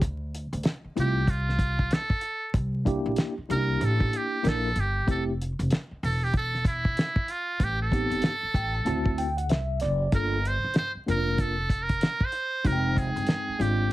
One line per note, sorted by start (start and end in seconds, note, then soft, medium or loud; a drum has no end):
0.01 0.46 D2 medium
0.01 kick loud
0.01 closed hi-hat medium
0.35 closed hi-hat medium
0.53 0.63 D2 medium
0.53 closed hi-hat medium
0.63 snare loud
0.63 closed hi-hat medium
0.84 muted upright bass stroke soft
0.96 1.87 C2 loud
0.96 1.20 A3 medium
0.96 1.21 C4 medium
0.96 1.21 E4 medium
0.96 1.21 F4 medium
0.96 closed hi-hat medium
1.00 1.31 G4 medium
1.27 1.95 F4 medium
1.27 kick medium
1.27 closed hi-hat medium
1.49 snare soft
1.59 kick loud
1.59 closed hi-hat medium
1.79 kick medium
1.91 2.55 A4 medium
1.91 snare medium
1.91 closed hi-hat medium
2.10 kick loud
2.21 closed hi-hat medium
2.54 2.98 C2 medium
2.54 kick loud
2.54 closed hi-hat medium
2.85 3.33 A#3 medium
2.85 3.33 D4 medium
2.85 3.33 E4 medium
2.85 3.34 G4 loud
2.85 kick medium
2.85 closed hi-hat medium
3.06 3.16 A#1 medium
3.16 snare loud
3.16 closed hi-hat medium
3.37 muted upright bass stroke soft
3.49 3.77 C2 medium
3.49 4.39 A#3 medium
3.49 4.39 D4 medium
3.49 3.58 D#4 soft
3.49 4.40 G4 medium
3.49 3.86 A#4 loud
3.49 closed hi-hat medium
3.56 4.43 E4 medium
3.81 4.08 A1 loud
3.81 4.18 A4 loud
3.81 closed hi-hat medium
4.00 kick medium
4.13 4.50 G4 medium
4.13 closed hi-hat medium
4.43 4.71 A#1 loud
4.43 4.68 A#3 medium
4.43 4.68 D4 medium
4.43 4.68 E4 medium
4.43 4.69 A#4 medium
4.43 snare loud
4.43 closed hi-hat medium
4.48 4.81 A4 medium
4.76 5.03 G1 medium
4.76 closed hi-hat medium
4.80 5.09 G4 medium
5.07 5.51 F1 loud
5.07 5.31 A3 medium
5.07 5.32 C4 medium
5.07 5.32 E4 medium
5.07 5.32 G4 medium
5.07 5.24 A4 medium
5.07 kick loud
5.07 closed hi-hat medium
5.41 closed hi-hat medium
5.59 5.69 F1 medium
5.59 closed hi-hat medium
5.70 snare loud
5.70 closed hi-hat medium
5.91 muted upright bass stroke soft
6.03 6.93 E1 loud
6.03 6.25 A4 loud
6.03 open hi-hat medium
6.24 6.35 G4 loud
6.34 6.65 A4 loud
6.34 kick medium
6.34 closed hi-hat medium
6.55 snare soft
6.65 7.32 E4 loud
6.65 kick loud
6.65 closed hi-hat medium
6.85 kick medium
6.97 snare loud
6.97 closed hi-hat medium
7.16 kick loud
7.28 7.65 F4 medium
7.28 closed hi-hat medium
7.60 8.04 A1 loud
7.60 7.81 G4 medium
7.60 kick loud
7.60 closed hi-hat medium
7.82 9.35 A4 loud
7.91 8.31 B3 medium
7.91 8.31 C4 medium
7.91 8.31 D#4 medium
7.91 8.32 G4 medium
7.91 kick medium
7.91 closed hi-hat medium
8.10 8.21 G1 medium
8.10 closed hi-hat medium
8.22 snare loud
8.22 closed hi-hat medium
8.43 muted upright bass stroke soft
8.54 8.82 A1 loud
8.54 8.73 G5 medium
8.54 kick medium
8.54 closed hi-hat medium
8.75 8.85 A5 medium
8.85 9.50 D2 loud
8.85 9.25 A3 medium
8.85 9.25 C4 medium
8.85 9.25 E4 medium
8.85 9.26 F#4 medium
8.85 9.16 A5 medium
8.85 closed hi-hat medium
9.06 kick loud
9.18 9.36 G5 medium
9.18 closed hi-hat medium
9.37 9.48 F#5 medium
9.37 closed hi-hat medium
9.49 9.77 C2 medium
9.49 9.79 E5 medium
9.49 snare loud
9.49 closed hi-hat medium
9.80 10.09 F#1 loud
9.80 10.11 D5 medium
9.80 snare soft
9.80 closed hi-hat medium
10.12 10.56 G1 loud
10.12 10.37 A#3 medium
10.12 10.37 D4 medium
10.12 10.38 F4 medium
10.12 10.38 A4 medium
10.12 10.49 A#4 loud
10.12 kick loud
10.12 closed hi-hat medium
10.45 10.77 C5 loud
10.45 closed hi-hat medium
10.64 10.74 G1 medium
10.74 snare loud
10.74 closed hi-hat medium
10.78 10.92 C5 loud
10.95 muted upright bass stroke soft
11.06 11.98 F1 loud
11.06 11.54 A#3 medium
11.06 11.54 D4 medium
11.06 11.55 F4 medium
11.06 11.55 A#4 medium
11.06 11.42 A#4 loud
11.06 closed hi-hat medium
11.38 11.84 A4 loud
11.38 kick medium
11.38 closed hi-hat medium
11.70 kick loud
11.70 closed hi-hat medium
11.83 12.26 A#4 loud
11.89 kick medium
11.89 closed hi-hat medium
12.01 snare loud
12.01 closed hi-hat medium
12.20 kick medium
12.25 12.68 C5 loud
12.32 closed hi-hat medium
12.64 13.09 F1 loud
12.64 13.55 G#3 medium
12.64 13.55 C4 medium
12.64 13.55 D#4 medium
12.64 12.73 F#4 medium
12.64 13.00 A#4 loud
12.64 kick loud
12.64 closed hi-hat medium
12.72 13.59 G5 medium
12.97 13.63 G#4 loud
12.97 kick medium
12.97 closed hi-hat medium
13.16 13.26 G1 medium
13.16 closed hi-hat medium
13.27 snare loud
13.27 closed hi-hat medium
13.48 muted upright bass stroke soft
13.59 13.87 G#1 loud
13.59 13.93 G#3 medium
13.59 13.93 C4 medium
13.59 13.93 D4 medium
13.59 13.93 F4 medium
13.59 13.92 G4 medium
13.59 closed hi-hat medium